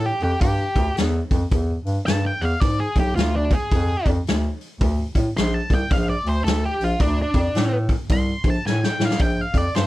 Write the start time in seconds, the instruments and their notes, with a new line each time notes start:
Already playing: bass clarinet A2
0.06 lead electric guitar G4
0.20 bass clarinet F2, lead electric guitar G4, open hi-hat
0.41 bass clarinet G2, lead electric guitar G4, kick, open hi-hat
0.76 bass clarinet D2, kick, open hi-hat
0.97 bass clarinet E2, snare, open hi-hat
1.31 bass clarinet F2, kick, open hi-hat
1.52 bass clarinet E2, kick, open hi-hat
1.85 bass clarinet G2, open hi-hat
2.06 bass clarinet G2, lead electric guitar A5, snare, open hi-hat
2.26 lead electric guitar G5
2.41 bass clarinet E2, lead electric guitar F5, open hi-hat
2.60 bass clarinet G#2, lead electric guitar D5, kick, open hi-hat
2.80 lead electric guitar G#4
2.96 bass clarinet B1, lead electric guitar G4, kick, open hi-hat
3.16 bass clarinet D2, lead electric guitar F4, snare, open hi-hat
3.36 lead electric guitar D4
3.51 lead electric guitar G#4, kick, open hi-hat
3.72 bass clarinet F2, kick, open hi-hat
4.06 bass clarinet F2, kick, open hi-hat
4.26 bass clarinet D2, snare, open hi-hat
4.61 open hi-hat
4.81 bass clarinet D2, kick, open hi-hat
5.15 bass clarinet A2, kick, open hi-hat
5.37 bass clarinet A#1, lead electric guitar C6, snare, open hi-hat
5.54 lead electric guitar A5
5.70 bass clarinet C2, kick, open hi-hat
5.74 lead electric guitar G5
5.91 bass clarinet A#1, lead electric guitar F5, kick, open hi-hat
6.10 lead electric guitar D5
6.25 bass clarinet D2, lead electric guitar C5, open hi-hat
6.44 bass clarinet D2, lead electric guitar A4, snare, open hi-hat
6.66 lead electric guitar G4
6.81 bass clarinet A#1, lead electric guitar F4, open hi-hat
7.00 bass clarinet D2, lead electric guitar D4, kick, open hi-hat
7.22 lead electric guitar D4
7.34 bass clarinet F2, kick, open hi-hat
7.55 bass clarinet A2, snare, open hi-hat
7.89 kick, open hi-hat
8.10 bass clarinet C2, lead electric guitar C6, kick, open hi-hat
8.44 bass clarinet A#1, kick, open hi-hat
8.50 lead electric guitar A5
8.65 bass clarinet A2, lead electric guitar G#5, snare
8.83 lead electric guitar G5, snare
8.99 bass clarinet A2, snare
9.05 lead electric guitar F5
9.11 snare
9.19 bass clarinet A#1, lead electric guitar G5, kick, open hi-hat
9.41 lead electric guitar F5
9.54 bass clarinet F2, lead electric guitar D5, kick, open hi-hat
9.75 bass clarinet G2, lead electric guitar C5, snare, open hi-hat